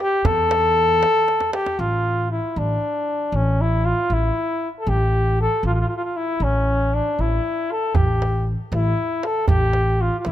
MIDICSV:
0, 0, Header, 1, 4, 480
1, 0, Start_track
1, 0, Tempo, 513699
1, 229, Time_signature, 6, 3, 24, 8
1, 9641, End_track
2, 0, Start_track
2, 0, Title_t, "Flugelhorn"
2, 0, Program_c, 0, 56
2, 3, Note_on_c, 0, 67, 94
2, 233, Note_on_c, 0, 69, 114
2, 247, Note_off_c, 0, 67, 0
2, 1423, Note_off_c, 0, 69, 0
2, 1428, Note_on_c, 0, 67, 84
2, 1672, Note_on_c, 0, 65, 73
2, 1686, Note_off_c, 0, 67, 0
2, 2149, Note_off_c, 0, 65, 0
2, 2154, Note_on_c, 0, 64, 63
2, 2406, Note_on_c, 0, 62, 74
2, 2420, Note_off_c, 0, 64, 0
2, 3127, Note_on_c, 0, 61, 67
2, 3141, Note_off_c, 0, 62, 0
2, 3371, Note_on_c, 0, 64, 73
2, 3385, Note_off_c, 0, 61, 0
2, 3597, Note_on_c, 0, 65, 75
2, 3611, Note_off_c, 0, 64, 0
2, 3855, Note_on_c, 0, 64, 82
2, 3869, Note_off_c, 0, 65, 0
2, 4381, Note_off_c, 0, 64, 0
2, 4476, Note_on_c, 0, 69, 65
2, 4564, Note_on_c, 0, 67, 75
2, 4578, Note_off_c, 0, 69, 0
2, 5035, Note_off_c, 0, 67, 0
2, 5050, Note_on_c, 0, 69, 81
2, 5262, Note_off_c, 0, 69, 0
2, 5285, Note_on_c, 0, 65, 77
2, 5342, Note_off_c, 0, 65, 0
2, 5359, Note_on_c, 0, 65, 59
2, 5414, Note_off_c, 0, 65, 0
2, 5421, Note_on_c, 0, 65, 65
2, 5480, Note_off_c, 0, 65, 0
2, 5490, Note_on_c, 0, 65, 51
2, 5550, Note_off_c, 0, 65, 0
2, 5569, Note_on_c, 0, 65, 67
2, 5625, Note_off_c, 0, 65, 0
2, 5639, Note_on_c, 0, 65, 64
2, 5754, Note_on_c, 0, 64, 83
2, 5768, Note_off_c, 0, 65, 0
2, 6005, Note_on_c, 0, 61, 72
2, 6019, Note_off_c, 0, 64, 0
2, 6483, Note_on_c, 0, 62, 71
2, 6497, Note_off_c, 0, 61, 0
2, 6730, Note_on_c, 0, 64, 77
2, 6744, Note_off_c, 0, 62, 0
2, 7204, Note_on_c, 0, 69, 77
2, 7219, Note_off_c, 0, 64, 0
2, 7427, Note_on_c, 0, 67, 68
2, 7441, Note_off_c, 0, 69, 0
2, 7908, Note_off_c, 0, 67, 0
2, 8167, Note_on_c, 0, 64, 77
2, 8638, Note_on_c, 0, 69, 85
2, 8652, Note_off_c, 0, 64, 0
2, 8848, Note_off_c, 0, 69, 0
2, 8854, Note_on_c, 0, 67, 83
2, 9352, Note_on_c, 0, 65, 71
2, 9366, Note_off_c, 0, 67, 0
2, 9513, Note_off_c, 0, 65, 0
2, 9518, Note_on_c, 0, 65, 50
2, 9590, Note_on_c, 0, 64, 79
2, 9605, Note_off_c, 0, 65, 0
2, 9641, Note_off_c, 0, 64, 0
2, 9641, End_track
3, 0, Start_track
3, 0, Title_t, "Upright bass"
3, 0, Program_c, 1, 32
3, 232, Note_on_c, 1, 40, 92
3, 963, Note_off_c, 1, 40, 0
3, 1671, Note_on_c, 1, 33, 76
3, 2219, Note_off_c, 1, 33, 0
3, 2395, Note_on_c, 1, 33, 74
3, 2575, Note_off_c, 1, 33, 0
3, 3105, Note_on_c, 1, 33, 75
3, 3655, Note_off_c, 1, 33, 0
3, 3831, Note_on_c, 1, 33, 73
3, 4012, Note_off_c, 1, 33, 0
3, 4547, Note_on_c, 1, 33, 82
3, 5097, Note_off_c, 1, 33, 0
3, 5261, Note_on_c, 1, 33, 78
3, 5447, Note_off_c, 1, 33, 0
3, 5980, Note_on_c, 1, 33, 77
3, 6533, Note_off_c, 1, 33, 0
3, 6715, Note_on_c, 1, 33, 67
3, 6896, Note_off_c, 1, 33, 0
3, 7426, Note_on_c, 1, 33, 73
3, 7977, Note_off_c, 1, 33, 0
3, 8145, Note_on_c, 1, 33, 73
3, 8330, Note_off_c, 1, 33, 0
3, 8864, Note_on_c, 1, 33, 82
3, 9417, Note_off_c, 1, 33, 0
3, 9588, Note_on_c, 1, 33, 72
3, 9641, Note_off_c, 1, 33, 0
3, 9641, End_track
4, 0, Start_track
4, 0, Title_t, "Tombak"
4, 232, Note_on_c, 9, 64, 102
4, 326, Note_off_c, 9, 64, 0
4, 477, Note_on_c, 9, 63, 88
4, 570, Note_off_c, 9, 63, 0
4, 721, Note_on_c, 9, 62, 24
4, 814, Note_off_c, 9, 62, 0
4, 959, Note_on_c, 9, 63, 79
4, 1052, Note_off_c, 9, 63, 0
4, 1198, Note_on_c, 9, 63, 53
4, 1291, Note_off_c, 9, 63, 0
4, 1311, Note_on_c, 9, 62, 70
4, 1405, Note_off_c, 9, 62, 0
4, 1433, Note_on_c, 9, 63, 79
4, 1526, Note_off_c, 9, 63, 0
4, 1554, Note_on_c, 9, 62, 77
4, 1648, Note_off_c, 9, 62, 0
4, 7424, Note_on_c, 9, 64, 81
4, 7518, Note_off_c, 9, 64, 0
4, 7680, Note_on_c, 9, 63, 65
4, 7774, Note_off_c, 9, 63, 0
4, 8153, Note_on_c, 9, 63, 61
4, 8247, Note_off_c, 9, 63, 0
4, 8384, Note_on_c, 9, 62, 23
4, 8477, Note_off_c, 9, 62, 0
4, 8628, Note_on_c, 9, 63, 64
4, 8721, Note_off_c, 9, 63, 0
4, 8855, Note_on_c, 9, 64, 80
4, 8948, Note_off_c, 9, 64, 0
4, 9096, Note_on_c, 9, 63, 67
4, 9189, Note_off_c, 9, 63, 0
4, 9575, Note_on_c, 9, 63, 72
4, 9641, Note_off_c, 9, 63, 0
4, 9641, End_track
0, 0, End_of_file